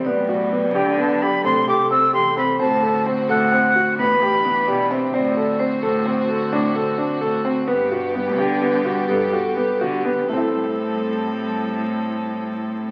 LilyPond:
<<
  \new Staff \with { instrumentName = "Flute" } { \time 11/8 \key a \dorian \tempo 4 = 130 r4. g''8 a''8 b''8 c'''8 d'''8 e'''8 c'''8 b''8 | a''4 r8 fis''4. b''2 r8 | r1 r4. | r1 r4. |
r1 r4. | }
  \new Staff \with { instrumentName = "Vibraphone" } { \time 11/8 \key a \dorian d''2. a'2~ a'8 | c''2. b'4. d''8 e''8 | d''4 c''1~ c''8 | b'2. a'4. g'4 |
e'1~ e'4. | }
  \new Staff \with { instrumentName = "Grand piano" } { \time 11/8 \key a \dorian b8 fis'8 b8 g'8 b8 g'8 c'8 g'8 c'8 g'8 c'8 | c'8 a'8 c'8 a'8 c'8 fis'8 b8 g'8 b8 g'8 c'8 | c'8 a'8 c'8 a'8 c'8 a'8 d'8 a'8 d'8 a'8 c'8 | b8 fis'8 b8 g'8 b8 fis'8 b8 fis'8 b8 fis'8 b8 |
<a c' e' a'>1~ <a c' e' a'>4. | }
  \new Staff \with { instrumentName = "String section" } { \time 11/8 \key a \dorian << { g1~ g4. | fis'2. g'2~ g'8 | fis'1~ fis'4. | g'1~ g'4. |
<g c' a'>1~ <g c' a'>4. | } \\ { <fis b>2. <c a>2~ <c a>8 | <d c'>2. <e d'>2~ <e d'>8 | <d c'>1~ <d c'>4. | <g b>1~ <g b>4. |
r1 r4. | } >> }
  \new Staff \with { instrumentName = "Cello" } { \clef bass \time 11/8 \key a \dorian a,4. d4. a,8 r4 e,4 | a,4. a,4. a,8 r4 b,4 | a,4. a,4. a,8 r4 a,4 | g,4. d4. g,8 r4 d4 |
a,1~ a,4. | }
>>